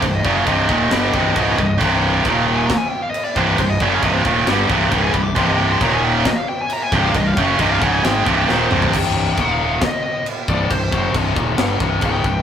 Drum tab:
CC |x---x---x---x---|x---x---x---x---|x---x---x---x---|x---x---x---x---|
SD |--------o-------|--------o-------|--------o-------|--------o-------|
T2 |----------------|----------------|----------------|----------------|
FT |----------------|----------------|----------------|----------------|
BD |o-o-o-o---o-o-o-|o---o---o-----o-|o-o-o-o---o-o-o-|o---o---o-----o-|

CC |x---x---x-------|x---x---x---x---|x---x---x---x---|
SD |--------o---o---|--------o-------|--------o-------|
T2 |--------------o-|----------------|----------------|
FT |---------------o|----------------|----------------|
BD |o-o-o-o---o-----|o---o---o-----o-|o-o-o-o---o-o-o-|